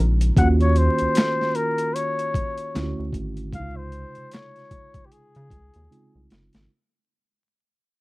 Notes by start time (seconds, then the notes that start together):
Already playing: C#3 G#3 C4 D#4 F4
0.00 A#1
0.21 closed hi-hat
0.36 D#2 D#3 A#3 C#4 F4 F#4 F#5, kick, closed hi-hat
0.60 C#5, closed hi-hat
0.76 C5, closed hi-hat
0.99 D2, closed hi-hat
1.15 snare, clap, closed hi-hat
1.41 snare
1.55 A#4, closed hi-hat
1.78 closed hi-hat
1.95 C#5, closed hi-hat
2.19 closed hi-hat
2.34 kick, closed hi-hat
2.58 closed hi-hat
2.74 D2 D3 A3 C#4 E4 F4, snare, clap, closed hi-hat
2.83 F#4
2.99 D2
3.13 G#1, kick, closed hi-hat
3.37 closed hi-hat
3.53 C#2 C3 C#3 G#3 D#4 E4 F5, kick, closed hi-hat
3.63 F4
3.77 C5
3.92 closed hi-hat
4.15 C#3, closed hi-hat
4.31 C#5, snare, clap, closed hi-hat
4.56 snare, closed hi-hat
4.71 kick, closed hi-hat
4.94 kick, closed hi-hat
5.06 G4
5.12 G#4, closed hi-hat
5.35 C#3, closed hi-hat
5.50 C#2, kick, closed hi-hat
5.74 D#2, closed hi-hat
5.90 C#3 G#3 C4 D#4 F4, closed hi-hat
6.15 C2
6.30 F#1, snare, closed hi-hat
6.53 G#1, snare, closed hi-hat